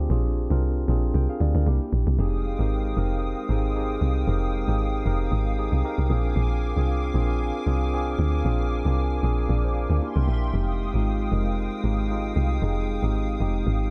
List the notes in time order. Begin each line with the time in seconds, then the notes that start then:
Already playing: C4 D4 F4 G4 G#4
0.10 A#1 C4 D4 F4 G#4
0.50 C2 C4 D4 F4 A#4
0.88 A#1 C4 D4 F4 G#4
1.14 C2 A#4 G5
1.30 G#4 F5
1.41 D2 F4 D5
1.55 D2 D4 A#4
1.67 C2 A#3 D4 E4 G4
1.93 A#1
2.07 C2
2.19 F1 G#3 C4 D#4 G4 G#4 F5 G5 D#6
2.59 G#1 C4 D#4 G4 A#4
2.97 F1 C4 D#4 G4 A#4
3.49 G#1 C4 D#4 G4 G#4
3.75 C4 D#4 G4 G#4
4.01 C2
4.28 F1 C4 D#4 G4 A#4
4.68 G#1 C4 D#4 G4 G#4
5.06 F1 C4 D#4 G4 A#4
5.32 G#1
5.58 C4 D#4 G4 G#4
5.72 C2
5.84 C4 D#4 G4 A#4
5.98 C2
6.10 A#1 C4 D4 F4 G#4 A#4 G#5 D6
6.36 A#1
6.77 C2 C4 D4 F4 G#4
7.14 A#1 C4 D4 F4 G#4
7.67 C2 C4 D4 F4 G#4
7.93 C4 D4 F4 G#4
8.19 D2
8.45 A#1 C4 D4 F4 G#4
8.85 C2 C4 D4 F4 A#4
9.23 A#1 C4 D4 F4 G#4
9.49 A#1 F4 D5
9.64 C5
9.90 D2 D4 A#4
10.02 A#3 D4 E4 G4 E5 G5 C6
10.16 C2
10.28 A#1
10.54 F1 G#3 C4 D#4 G4 F5 D#6
10.94 G#1 G#3 C4 D#4 F4
11.32 F1 G#3 C4 D#4 A#4
11.84 G#1 G#3 C4 D#4 G4
12.11 G#3 C4 D#4 F4
12.36 C2
12.62 F1 G#3 C4 D#4 G#4
13.03 G#1 G#3 C4 D#4 G4
13.41 F1 G#3 C4 D#4 G4
13.67 G#1